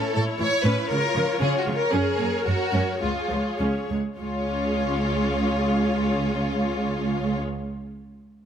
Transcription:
Already playing: viola section C#4 E4, violin section A4 C#5
0.15 cello section A2, viola section A3, violin section A4
0.40 cello section A2, viola section E3, violin section C#5
0.64 cello section A2, viola section C#4, violin section B4
0.90 cello section C#3, viola section G#3 F4, violin section A#4
1.15 cello section C#3, viola section F3
1.40 cello section C#3, viola section C#4, violin section G#4
1.58 violin section F#4
1.66 cello section C#3, viola section G#3
1.75 violin section A#4
1.91 cello section F#2, viola section C#4 A#4, violin section G#4
2.19 cello section F#2, viola section A#3
2.46 cello section F#2, viola section F#3, violin section F#4
2.73 cello section F#2, viola section C#4
3.01 cello section C#2, viola section G#3 G#4, violin section F4
3.30 cello section C#2, viola section F3
3.59 cello section C#2, viola section C#4
3.90 cello section C#2, viola section G#3
4.19 cello section C#2, viola section C#4 G#4, violin section F4 C#5

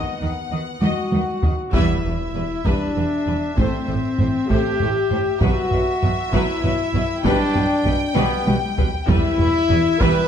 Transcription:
Already playing: french horn section B3, viola section D#5, violin section D#5 F#5
0.21 double bass section D#2, cello section D#3, violin section B4, viola section D#5
0.51 double bass section D#2, cello section D#3, violin section F#4, viola section D#5
0.81 double bass section D#2, cello section D#3, french horn section F#4, trumpet F#4, violin section D#5, viola section D#5, taiko high
1.12 double bass section D#2, cello section D#3, violin section B4, viola section D#5, taiko high
1.42 double bass section D#2, cello section D#3, violin section F#4, viola section D#5, taiko low
1.72 double bass section E1, cello section E2, viola section G3, trumpet E4, french horn section E4, violin section B4 E5, taiko, impact
2.04 double bass section E1, cello section E2, viola section G3, violin section B4
2.35 double bass section E1, cello section E2, viola section G3, violin section B4
2.65 double bass section E1, cello section E2, viola section G3, french horn section D4, trumpet D4, violin section B4, taiko
2.95 double bass section E1, cello section E2, viola section G3, violin section B4
3.26 double bass section E1, cello section E2, viola section G3, violin section B4
3.55 double bass section A1, cello section A2, viola section A3, french horn section C4, trumpet C4, violin section C5, taiko
3.87 double bass section A1, cello section A2, viola section A3, violin section C5, taiko low-mid
4.18 double bass section A1, cello section A2, viola section A3, violin section C5, taiko low-mid
4.48 double bass section A1, cello section A2, viola section A3, french horn section G4, trumpet G4, violin section C5, taiko
4.79 double bass section A1, cello section A2, viola section A3, violin section C5, taiko low-mid
5.10 double bass section A1, cello section A2, viola section A3, violin section C5, taiko low-mid
5.40 double bass section B1, cello section B2, viola section F#3, french horn section F#4, trumpet F#4, violin section B4 E5, taiko
5.72 double bass section B1, cello section B2, viola section F#3, violin section B4, taiko low-mid
6.02 double bass section B1, cello section B2, viola section F#3, violin section B4, taiko low-mid
6.33 double bass section B1, cello section B2, viola section F#3, french horn section E4, trumpet E4, violin section B4, taiko
6.62 double bass section B1, cello section B2, viola section F#3, violin section B4, taiko low-mid
6.94 double bass section B1, cello section B2, viola section F#3, violin section B4, taiko low-mid
7.24 double bass section B1, cello section B2, viola section G3, french horn section D4, trumpet D4, violin section B4 G5, taiko
7.54 double bass section B1, cello section B2, viola section G3, violin section B4, taiko low-mid
7.85 double bass section B1, cello section B2, viola section G3, violin section B4, taiko low-mid
8.15 double bass section B1, cello section B2, viola section G3, french horn section B3, trumpet B3, violin section B4, taiko high
8.46 double bass section B1, cello section B2, viola section G3, violin section B4, taiko high
8.78 double bass section B1, cello section B2, viola section G3, violin section B4, taiko low
9.08 double bass section E1, cello section E2, viola section G3, french horn section E4, trumpet E4, violin section B4 E5, taiko
9.38 double bass section E1, cello section E2, viola section G3, violin section B4, taiko low-mid
9.69 double bass section E1, cello section E2, viola section G3, violin section B4, taiko low-mid
10.00 double bass section E1, cello section E2, viola section G3, french horn section B4, violin section B4, trumpet B4, taiko

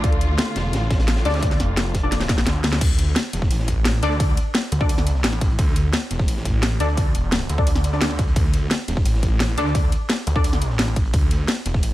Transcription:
Already playing: string section D3 A3 F4
0.04 detuned saw bass D2, kick, closed hi-hat
0.12 closed hi-hat
0.21 closed hi-hat
0.39 snare, closed hi-hat
0.56 detuned saw bass E1, snare, closed hi-hat
0.64 snare
0.73 detuned saw bass A1, snare, closed hi-hat
0.82 snare
0.90 kick, snare, closed hi-hat
0.99 snare, closed hi-hat
1.07 snare, closed hi-hat
1.16 snare, closed hi-hat
1.25 detuned saw bass D2, synth stab D4 A4 D5, snare, closed hi-hat
1.29 snare, closed hi-hat
1.34 snare, closed hi-hat
1.38 snare, closed hi-hat
1.43 kick, closed hi-hat
1.51 snare, closed hi-hat
1.60 detuned saw bass F1, snare, closed hi-hat
1.77 snare, closed hi-hat
1.86 closed hi-hat
1.94 kick, snare, closed hi-hat
2.03 synth stab D4 A4 D5
2.11 snare, closed hi-hat
2.20 snare, closed hi-hat
2.29 kick, snare, closed hi-hat
2.38 snare, closed hi-hat
2.47 detuned saw bass D2, snare, closed hi-hat
2.64 snare, closed hi-hat
2.73 snare, closed hi-hat
2.81 detuned saw bass D2, kick, closed hi-hat, crash, ride
2.99 closed hi-hat
3.15 snare, closed hi-hat, ride
3.33 detuned saw bass E1, closed hi-hat
3.42 kick, snare
3.51 detuned saw bass A1, closed hi-hat, ride
3.59 snare
3.68 kick, closed hi-hat
3.84 snare, closed hi-hat, ride
4.03 detuned saw bass D2, synth stab D4 A4 D5, closed hi-hat
4.12 closed hi-hat
4.20 kick, closed hi-hat, ride
4.37 closed hi-hat
4.54 snare, closed hi-hat, ride
4.72 detuned saw bass D2, closed hi-hat
4.81 synth stab D4 A4 D5, kick
4.89 closed hi-hat, ride
4.98 snare
5.07 closed hi-hat
5.15 snare
5.24 detuned saw bass A1, snare, closed hi-hat, ride
5.33 snare
5.41 detuned saw bass A1, kick, closed hi-hat
5.50 closed hi-hat
5.59 detuned saw bass D2, kick, closed hi-hat, ride
5.76 closed hi-hat
5.93 snare, closed hi-hat, ride
6.11 detuned saw bass E1, closed hi-hat
6.19 kick, snare
6.28 detuned saw bass A1, closed hi-hat, ride
6.37 snare
6.45 kick, closed hi-hat
6.62 snare, closed hi-hat, ride
6.80 detuned saw bass D2, synth stab D4 A4 D5, closed hi-hat
6.88 closed hi-hat
6.97 kick, closed hi-hat, ride
7.15 detuned saw bass E1, closed hi-hat
7.32 snare, closed hi-hat, ride
7.41 closed hi-hat
7.49 detuned saw bass D2, closed hi-hat
7.58 synth stab D4 A4 D5, kick
7.67 closed hi-hat, ride
7.75 snare
7.84 closed hi-hat
7.92 synth stab D4 A4 D5, snare
8.01 detuned saw bass D2, snare, closed hi-hat, ride
8.10 snare
8.19 kick, closed hi-hat
8.28 closed hi-hat
8.36 detuned saw bass D2, kick, closed hi-hat, ride
8.54 closed hi-hat
8.71 snare, closed hi-hat, ride
8.88 detuned saw bass E1, closed hi-hat
8.96 kick, snare
9.05 detuned saw bass A1, closed hi-hat, ride
9.14 snare
9.23 kick, closed hi-hat
9.40 snare, closed hi-hat, ride
9.58 detuned saw bass D2, synth stab D4 A4 D5, closed hi-hat
9.67 closed hi-hat
9.75 kick, closed hi-hat, ride
9.92 closed hi-hat
10.09 snare, closed hi-hat, ride
10.18 closed hi-hat
10.27 detuned saw bass D2, closed hi-hat
10.36 synth stab D4 A4 D5, kick
10.44 closed hi-hat, ride
10.53 snare
10.61 closed hi-hat
10.70 snare
10.79 detuned saw bass A1, snare, closed hi-hat, ride
10.88 snare
10.96 detuned saw bass A1, kick, closed hi-hat
11.05 closed hi-hat
11.13 detuned saw bass D2, kick, closed hi-hat, ride
11.31 closed hi-hat
11.48 snare, closed hi-hat, ride
11.66 detuned saw bass E1, closed hi-hat
11.74 kick, snare
11.83 detuned saw bass A1, closed hi-hat, ride

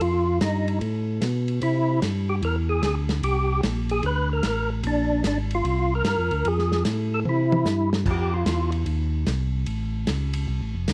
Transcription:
0.01 tonewheel organ F2 F4, ride
0.41 tonewheel organ G2 D#4, snare, hi-hat pedal, ride
0.68 ride
0.81 tonewheel organ A2, ride
1.21 tonewheel organ B2, snare, hi-hat pedal, ride
1.48 ride
1.61 tonewheel organ C3 E4, ride
2.02 tonewheel organ G2, snare, hi-hat pedal, ride
2.29 tonewheel organ G4
2.42 tonewheel organ E2 A#4, ride
2.69 tonewheel organ G#4
2.82 tonewheel organ D2 G#4, snare, hi-hat pedal, ride
3.09 snare, ride
3.22 tonewheel organ C2 G4, ride
3.63 tonewheel organ A#1, snare, hi-hat pedal, ride
3.89 tonewheel organ G#4, ride
4.03 tonewheel organ D2 B4, ride
4.33 tonewheel organ A#4
4.43 tonewheel organ A1, snare, hi-hat pedal, ride
4.47 tonewheel organ A#4
4.83 tonewheel organ A#1 D4, ride
5.23 tonewheel organ G#1 D4, snare, hi-hat pedal, ride
5.51 ride
5.55 tonewheel organ F4
5.64 tonewheel organ C2, ride
5.95 tonewheel organ A#4
6.04 tonewheel organ G2, snare, hi-hat pedal, ride
6.18 tonewheel organ F2
6.31 tonewheel organ D2, ride
6.45 tonewheel organ F2 G#4, ride
6.59 snare
6.72 snare
6.85 tonewheel organ A2, snare, hi-hat pedal, ride
7.14 tonewheel organ A4
7.25 tonewheel organ C3 E4, high tom
7.52 high tom
7.65 tonewheel organ G2, snare, hi-hat pedal
7.93 snare
8.05 tonewheel organ F2, kick, crash
8.11 tonewheel organ G4
8.34 tonewheel organ F4
8.45 tonewheel organ E2, snare, hi-hat pedal, ride
8.72 ride
8.86 tonewheel organ D#2, ride
9.27 tonewheel organ C2, snare, hi-hat pedal, ride
9.66 tonewheel organ A1, ride
10.07 tonewheel organ C#2, snare, hi-hat pedal, ride
10.33 ride
10.48 tonewheel organ C2
10.61 tonewheel organ A1
10.75 tonewheel organ F1
10.88 tonewheel organ D2, snare, hi-hat pedal, ride

